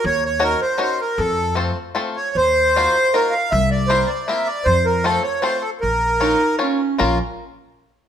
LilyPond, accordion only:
\new Staff \with { instrumentName = "Accordion" } { \time 3/4 \key bes \minor \tempo 4 = 156 des''8 des''8 bes'8 c''8 c''8 bes'8 | a'4 r4. des''8 | c''2 bes'8 f''8 | e''8 d''8 c''8 d''8 e''8 d''8 |
c''8 bes'8 a'8 des''8 c''8 a'8 | bes'2 r4 | f'8 r2 r8 | }